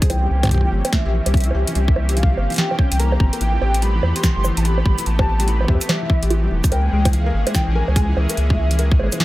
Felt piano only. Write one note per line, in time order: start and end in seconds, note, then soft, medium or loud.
0.02 0.07 G#4 loud
0.10 0.19 E3 medium
0.22 0.26 G3 loud
0.43 0.51 E3 medium
0.51 0.60 G4 loud
0.64 0.70 E3 medium
0.72 0.77 G3 loud
0.93 1.05 E3 medium
1.06 1.11 G4 loud
1.13 1.22 E3 medium
1.26 1.29 G3 loud
1.47 1.54 E3 medium
1.55 1.64 G4 loud
1.68 1.73 E3 medium
1.75 1.81 G3 loud
1.96 2.08 E3 medium
2.09 2.14 G4 loud
2.17 2.26 E3 medium
2.30 2.33 G3 loud
2.50 2.58 E3 medium
2.58 2.67 G4 loud
2.71 2.77 E3 medium
2.79 2.88 C#4 loud
2.92 2.97 C4 medium
2.99 3.09 A#3 loud
3.12 3.18 A#3 medium
3.20 3.29 C4 loud
3.33 3.39 A#3 loud
3.41 3.50 E3 medium
3.54 3.61 E3 medium
3.62 3.71 G4 loud
3.82 3.88 G3 loud
3.95 4.01 E3 medium
4.03 4.15 E3 medium
4.16 4.21 G4 loud
4.36 4.40 G3 loud
4.44 4.53 E3 medium
4.57 4.65 E3 medium
4.65 4.74 G4 loud
4.86 4.91 G3 loud
4.98 5.04 E3 medium
5.06 5.19 E3 medium
5.19 5.25 G4 loud
5.40 5.43 G3 loud
5.48 5.57 E3 medium
5.61 5.68 E3 medium
5.68 5.77 G4 loud
5.89 5.95 G3 loud
6.02 6.07 E3 medium
6.10 6.22 E3 medium
6.23 6.28 G4 loud
6.43 6.47 G3 loud
6.51 6.60 E3 medium
6.64 6.72 E3 medium
6.72 6.81 A#4 loud
6.93 6.98 G#3 loud
7.06 7.11 E3 medium
7.13 7.25 E3 medium
7.26 7.32 A#4 loud
7.47 7.50 G#3 loud
7.55 7.64 E3 medium
7.68 7.75 E3 medium
7.75 7.84 A#4 loud
7.96 8.01 G#3 loud
8.09 8.14 E3 medium
8.17 8.29 E3 medium
8.30 8.35 A#4 loud
8.50 8.54 G#3 loud
8.58 8.67 E3 medium
8.71 8.78 E3 medium
8.79 8.88 A#4 loud
9.00 9.05 G#3 loud
9.12 9.18 E3 medium
9.20 9.25 E3 medium